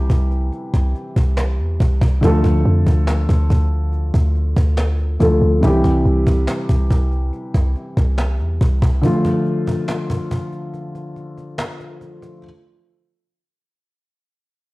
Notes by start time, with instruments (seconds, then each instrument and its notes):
Already playing: grand piano C3 E3 G3 E4 G4
0.10 808-style bass C2, cajon bass
0.31 cajon slap
0.52 cajon slap
0.74 808-style bass C2, cajon bass, cajon slap
0.95 cajon slap
1.16 808-style bass C2, cajon bass
1.37 cajon slap
1.59 808-style bass E2, cajon slap
1.80 808-style bass C2, cajon bass
2.01 808-style bass C2, cajon bass, cajon slap
2.13 cajon slap
2.21 808-style bass D2, grand piano D3 F3 A3 F4 A4, cajon bass
2.44 808-style bass D2, cajon bass, cajon slap
2.65 808-style bass F2, cajon slap
2.86 808-style bass D2, cajon bass
3.07 cajon slap
3.29 808-style bass D2, cajon bass
3.50 808-style bass D2, cajon bass
3.72 cajon slap
3.93 cajon slap
4.14 808-style bass D2, cajon bass, cajon slap
4.35 cajon slap
4.57 808-style bass D2, cajon bass
4.77 cajon slap
4.99 cajon slap
5.20 808-style bass D2, grand piano D3 F3 A3 F4 A4, cajon bass
5.42 808-style bass D2, cajon slap
5.61 808-style bass C2, grand piano C3 E3 G3 E4 G4, cajon bass
5.84 808-style bass C2, cajon bass, cajon slap
6.05 808-style bass C2, cajon slap
6.27 808-style bass C2, cajon bass
6.47 cajon slap
6.69 808-style bass C2, cajon bass
6.91 808-style bass C2, cajon bass
7.12 cajon slap
7.33 cajon slap
7.54 808-style bass C2, cajon bass, cajon slap
7.76 cajon slap
7.97 808-style bass C2, cajon bass
8.18 cajon slap
8.39 808-style bass E2, cajon slap
8.61 808-style bass C2, cajon bass
8.82 808-style bass C2, cajon bass, cajon slap
8.93 cajon slap
9.01 grand piano D3 F3 A3 F4, cajon bass
9.25 cajon bass, cajon slap
9.46 cajon slap
9.67 cajon bass
9.88 cajon slap
10.10 cajon bass
10.31 cajon bass
10.52 cajon slap
10.74 cajon slap
10.95 cajon slap
11.16 cajon slap
11.37 cajon slap
11.58 cajon slap
11.80 cajon slap
12.01 cajon slap
12.23 cajon slap